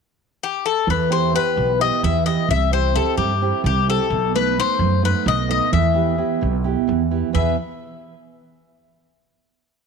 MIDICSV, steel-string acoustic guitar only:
0, 0, Header, 1, 2, 480
1, 0, Start_track
1, 0, Key_signature, 1, "minor"
1, 0, Tempo, 461894
1, 908, Time_signature, 7, 3, 24, 8
1, 10249, End_track
2, 0, Start_track
2, 0, Title_t, "Steel-string acoustic guitar"
2, 0, Program_c, 0, 25
2, 910, Note_on_c, 0, 52, 61
2, 1141, Note_on_c, 0, 59, 41
2, 1145, Note_on_c, 0, 64, 42
2, 1150, Note_on_c, 0, 67, 48
2, 1374, Note_off_c, 0, 52, 0
2, 1374, Note_off_c, 0, 59, 0
2, 1377, Note_off_c, 0, 64, 0
2, 1385, Note_on_c, 0, 59, 47
2, 1386, Note_off_c, 0, 67, 0
2, 1390, Note_on_c, 0, 64, 42
2, 1398, Note_on_c, 0, 67, 49
2, 1619, Note_on_c, 0, 47, 66
2, 1771, Note_off_c, 0, 59, 0
2, 1772, Note_off_c, 0, 64, 0
2, 1778, Note_off_c, 0, 67, 0
2, 1861, Note_on_c, 0, 59, 43
2, 1866, Note_on_c, 0, 64, 41
2, 1873, Note_on_c, 0, 67, 49
2, 2088, Note_off_c, 0, 47, 0
2, 2108, Note_on_c, 0, 52, 59
2, 2247, Note_off_c, 0, 59, 0
2, 2250, Note_off_c, 0, 64, 0
2, 2254, Note_off_c, 0, 67, 0
2, 2344, Note_on_c, 0, 59, 45
2, 2351, Note_on_c, 0, 64, 42
2, 2352, Note_on_c, 0, 67, 44
2, 2538, Note_off_c, 0, 59, 0
2, 2540, Note_off_c, 0, 64, 0
2, 2542, Note_off_c, 0, 67, 0
2, 2573, Note_off_c, 0, 52, 0
2, 2582, Note_on_c, 0, 48, 66
2, 2817, Note_on_c, 0, 60, 42
2, 2827, Note_on_c, 0, 64, 43
2, 2835, Note_on_c, 0, 67, 50
2, 3050, Note_off_c, 0, 48, 0
2, 3056, Note_off_c, 0, 60, 0
2, 3060, Note_off_c, 0, 64, 0
2, 3068, Note_on_c, 0, 60, 50
2, 3069, Note_off_c, 0, 67, 0
2, 3073, Note_on_c, 0, 64, 40
2, 3081, Note_on_c, 0, 67, 51
2, 3301, Note_on_c, 0, 55, 64
2, 3452, Note_off_c, 0, 60, 0
2, 3454, Note_off_c, 0, 64, 0
2, 3460, Note_off_c, 0, 67, 0
2, 3552, Note_on_c, 0, 60, 42
2, 3557, Note_on_c, 0, 64, 44
2, 3560, Note_on_c, 0, 67, 51
2, 3770, Note_off_c, 0, 55, 0
2, 3792, Note_on_c, 0, 48, 65
2, 3935, Note_off_c, 0, 60, 0
2, 3938, Note_off_c, 0, 64, 0
2, 3939, Note_off_c, 0, 67, 0
2, 4032, Note_on_c, 0, 60, 45
2, 4036, Note_on_c, 0, 64, 37
2, 4039, Note_on_c, 0, 67, 46
2, 4223, Note_off_c, 0, 60, 0
2, 4224, Note_off_c, 0, 64, 0
2, 4227, Note_off_c, 0, 67, 0
2, 4256, Note_off_c, 0, 48, 0
2, 4277, Note_on_c, 0, 47, 63
2, 4513, Note_on_c, 0, 57, 48
2, 4523, Note_on_c, 0, 59, 43
2, 4529, Note_on_c, 0, 63, 53
2, 4739, Note_off_c, 0, 47, 0
2, 4746, Note_off_c, 0, 57, 0
2, 4750, Note_off_c, 0, 59, 0
2, 4751, Note_off_c, 0, 63, 0
2, 4758, Note_on_c, 0, 57, 44
2, 4763, Note_on_c, 0, 63, 51
2, 4766, Note_on_c, 0, 59, 42
2, 4985, Note_on_c, 0, 54, 59
2, 5139, Note_off_c, 0, 57, 0
2, 5142, Note_off_c, 0, 59, 0
2, 5142, Note_off_c, 0, 63, 0
2, 5215, Note_on_c, 0, 57, 46
2, 5224, Note_on_c, 0, 59, 39
2, 5226, Note_on_c, 0, 63, 49
2, 5453, Note_off_c, 0, 54, 0
2, 5461, Note_on_c, 0, 47, 67
2, 5605, Note_off_c, 0, 57, 0
2, 5610, Note_off_c, 0, 59, 0
2, 5612, Note_off_c, 0, 63, 0
2, 5701, Note_on_c, 0, 57, 41
2, 5704, Note_on_c, 0, 59, 39
2, 5705, Note_on_c, 0, 63, 50
2, 5896, Note_off_c, 0, 59, 0
2, 5897, Note_off_c, 0, 57, 0
2, 5899, Note_off_c, 0, 63, 0
2, 5931, Note_off_c, 0, 47, 0
2, 5947, Note_on_c, 0, 52, 66
2, 6173, Note_on_c, 0, 59, 43
2, 6179, Note_on_c, 0, 64, 41
2, 6185, Note_on_c, 0, 67, 50
2, 6411, Note_off_c, 0, 59, 0
2, 6411, Note_off_c, 0, 64, 0
2, 6414, Note_off_c, 0, 67, 0
2, 6415, Note_off_c, 0, 52, 0
2, 6422, Note_on_c, 0, 59, 43
2, 6424, Note_on_c, 0, 64, 43
2, 6429, Note_on_c, 0, 67, 51
2, 6664, Note_on_c, 0, 47, 63
2, 6810, Note_off_c, 0, 59, 0
2, 6811, Note_off_c, 0, 64, 0
2, 6812, Note_off_c, 0, 67, 0
2, 6902, Note_on_c, 0, 64, 40
2, 6904, Note_on_c, 0, 59, 44
2, 6912, Note_on_c, 0, 67, 51
2, 7133, Note_off_c, 0, 47, 0
2, 7144, Note_on_c, 0, 52, 65
2, 7289, Note_off_c, 0, 64, 0
2, 7291, Note_off_c, 0, 59, 0
2, 7296, Note_off_c, 0, 67, 0
2, 7388, Note_on_c, 0, 59, 42
2, 7392, Note_on_c, 0, 64, 38
2, 7394, Note_on_c, 0, 67, 43
2, 7582, Note_off_c, 0, 59, 0
2, 7583, Note_off_c, 0, 64, 0
2, 7585, Note_off_c, 0, 67, 0
2, 7609, Note_off_c, 0, 52, 0
2, 7614, Note_on_c, 0, 40, 54
2, 7619, Note_on_c, 0, 47, 52
2, 7621, Note_on_c, 0, 52, 48
2, 7627, Note_on_c, 0, 59, 48
2, 7629, Note_on_c, 0, 68, 47
2, 7636, Note_on_c, 0, 71, 59
2, 7846, Note_off_c, 0, 40, 0
2, 7847, Note_off_c, 0, 47, 0
2, 7849, Note_off_c, 0, 52, 0
2, 7851, Note_off_c, 0, 59, 0
2, 7853, Note_off_c, 0, 68, 0
2, 7857, Note_off_c, 0, 71, 0
2, 10249, End_track
0, 0, End_of_file